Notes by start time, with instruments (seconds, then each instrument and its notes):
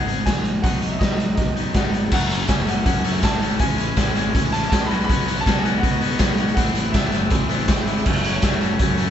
Already playing: fingered electric bass G#1, overdriven electric guitar G#2 D#3 G#3 B3 D#4, upright piano F#5
0.06 clean electric guitar B3 D#4 G#4, closed hi-hat
0.26 fingered electric bass A#1, upright piano G#5, kick, snare, closed hi-hat
0.45 closed hi-hat
0.62 fingered electric bass B1, overdriven electric guitar B2 D#3 F#3, upright piano F#5, kick, closed hi-hat
0.67 overdriven electric guitar B3 D#4
0.82 fingered electric bass B1, closed hi-hat
0.92 upright piano E5
0.99 fingered electric bass B1, upright piano D#5, kick, snare, closed hi-hat
1.20 closed hi-hat
1.35 fingered electric bass B1, upright piano D#5, kick, closed hi-hat
1.56 clean electric guitar F#3 B3 D#4, closed hi-hat
1.74 fingered electric bass G#1, clean electric guitar F#3 B3, upright piano F#5, kick, snare, closed hi-hat
1.79 clean electric guitar D#4
1.93 closed hi-hat
2.11 fingered electric bass F#1, clean electric guitar E3, string machine F#3 F#4 A4 E5, overdriven electric guitar F#3 A3 C#4 F#4, upright piano F#5, kick, crash
2.22 closed hi-hat
2.30 clean electric guitar E3, overdriven electric guitar F#3 A3 C#4 F#4, closed hi-hat, tambourine
2.40 closed hi-hat, tambourine
2.47 fingered electric bass F#1, clean electric guitar E3, overdriven electric guitar F#3 A3 C#4 F#4, upright piano G#5, kick, snare, closed hi-hat, tambourine
2.67 clean electric guitar E3, overdriven electric guitar F#3 A3 C#4 F#4, upright piano F#5, closed hi-hat, tambourine
2.85 fingered electric bass F#2, clean electric guitar E3, overdriven electric guitar F#3 A3 C#4 F#4, upright piano F#5, kick, closed hi-hat
3.03 clean electric guitar E3, overdriven electric guitar F#3 A3 C#4 F#4, snare, closed hi-hat, tambourine
3.13 closed hi-hat, tambourine
3.22 fingered electric bass G#1, clean electric guitar E3, overdriven electric guitar F#3 A3 C#4 F#4, upright piano A5, kick, snare, closed hi-hat, tambourine
3.40 clean electric guitar E3, overdriven electric guitar F#3 A3 C#4 F#4, closed hi-hat
3.50 closed hi-hat, tambourine
3.58 fingered electric bass A1, overdriven electric guitar A2 E3 A3 C#4 E4, clean electric guitar G#3, string machine A3 E4 G#4 C#5, upright piano G#5, kick, closed hi-hat
3.70 closed hi-hat
3.78 overdriven electric guitar A2 E3 A3 C#4 E4, clean electric guitar G#3, closed hi-hat, tambourine
3.96 fingered electric bass A1, overdriven electric guitar A2 E3 A3 C#4 E4, clean electric guitar G#3, kick, snare, closed hi-hat, tambourine
4.05 tambourine
4.14 fingered electric bass G#1, overdriven electric guitar A2 E3 A3 C#4 E4, clean electric guitar G#3, closed hi-hat, tambourine
4.34 fingered electric bass A1, overdriven electric guitar A2 E3 A3 C#4 E4, clean electric guitar G#3, kick, closed hi-hat
4.52 overdriven electric guitar A2 E3 A3 C#4 E4, clean electric guitar G#3, upright piano A5, snare, closed hi-hat, tambourine
4.63 closed hi-hat
4.70 fingered electric bass A1, overdriven electric guitar A2 E3 A3 C#4, clean electric guitar G#3, upright piano A5, kick, snare, closed hi-hat, tambourine
4.74 overdriven electric guitar E4
4.87 string machine B3 F#4 C#5 D#5, upright piano B5
4.91 fingered electric bass B1, overdriven electric guitar B2 D#3 F#3 B3 F#4, clean electric guitar C#4, closed hi-hat
5.01 upright piano B5, closed hi-hat, tambourine
5.09 overdriven electric guitar B2 D#3 F#3 B3 F#4, clean electric guitar C#4, kick, closed hi-hat
5.27 overdriven electric guitar B2 D#3 F#3 B3 F#4, clean electric guitar C#4, closed hi-hat, tambourine
5.38 upright piano A5, closed hi-hat, tambourine
5.45 fingered electric bass B1, overdriven electric guitar B2 D#3 F#3 B3 F#4, clean electric guitar C#4, kick, snare, closed hi-hat, tambourine
5.59 upright piano G#5
5.65 overdriven electric guitar B2 D#3 F#3 B3 F#4, clean electric guitar C#4, closed hi-hat, tambourine
5.79 overdriven electric guitar B2 D#3, upright piano F#5
5.83 fingered electric bass B2, overdriven electric guitar F#3 B3 F#4, clean electric guitar C#4, kick, closed hi-hat, tambourine
5.92 tambourine
6.01 overdriven electric guitar B2 D#3 F#3 B3 F#4, clean electric guitar C#4, snare, closed hi-hat, tambourine
6.11 closed hi-hat, tambourine
6.19 fingered electric bass B1, overdriven electric guitar B2 D#3 F#3 B3 F#4, clean electric guitar C#4, kick, snare, closed hi-hat, tambourine
6.37 overdriven electric guitar B2 D#3 F#3 B3 F#4, clean electric guitar C#4, closed hi-hat
6.47 closed hi-hat, tambourine
6.55 fingered electric bass A1, overdriven electric guitar A2, string machine A3 E4 A4 C5, clean electric guitar B3, upright piano F#5, kick, closed hi-hat
6.59 overdriven electric guitar E3 A3 C4 E4
6.66 closed hi-hat
6.75 overdriven electric guitar A2 E3 A3 C4 E4, clean electric guitar B3, closed hi-hat, tambourine
6.92 fingered electric bass A1, overdriven electric guitar A2 E3 A3 C4, clean electric guitar B3, upright piano E5, kick, snare, closed hi-hat, tambourine
6.97 overdriven electric guitar E4
7.04 closed hi-hat
7.12 fingered electric bass F#1, overdriven electric guitar A2 E3 A3 C4, clean electric guitar B3, closed hi-hat, tambourine
7.16 overdriven electric guitar E4
7.30 fingered electric bass A1, overdriven electric guitar A2 E3 A3, clean electric guitar B3, tine electric piano C5, kick, closed hi-hat
7.35 overdriven electric guitar C4 E4
7.49 clean electric guitar E3 B3, snare, closed hi-hat, tambourine
7.53 overdriven electric guitar A2 E3 A3 C4 E4
7.59 closed hi-hat
7.68 fingered electric bass G#1, overdriven electric guitar A2 E3, clean electric guitar B3, kick, snare, closed hi-hat, tambourine
7.72 overdriven electric guitar A3 C4 E4
7.86 clean electric guitar B3, tine electric piano E5, closed hi-hat
7.90 overdriven electric guitar A2 E3 A3 C4 E4
7.96 closed hi-hat, tambourine
8.05 fingered electric bass F#1, clean electric guitar E3, string machine F#3 F#4 A4 E5, overdriven electric guitar F#3 A3, tine electric piano D#5, kick, crash
8.09 overdriven electric guitar C#4 F#4
8.16 closed hi-hat
8.24 clean electric guitar E3, overdriven electric guitar F#3 A3 C#4 F#4, closed hi-hat, tambourine
8.34 tine electric piano C#5, closed hi-hat, tambourine
8.42 fingered electric bass F#1, clean electric guitar E3, overdriven electric guitar F#3 A3 C#4 F#4, kick, snare, closed hi-hat, tambourine
8.52 tambourine
8.61 clean electric guitar E3, overdriven electric guitar F#3 A3 C#4 F#4, closed hi-hat, tambourine
8.79 fingered electric bass F#2, clean electric guitar E3, overdriven electric guitar F#3 A3 C#4 F#4, kick, closed hi-hat
8.90 tambourine
8.97 clean electric guitar E3, overdriven electric guitar F#3 A3 C#4 F#4, closed hi-hat, tambourine